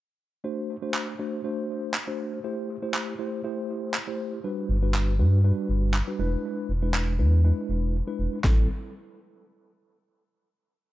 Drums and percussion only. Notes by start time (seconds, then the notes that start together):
0.94 clap
1.94 clap
2.94 clap
3.94 clap
4.94 clap
5.94 clap
6.94 clap
8.44 kick, snare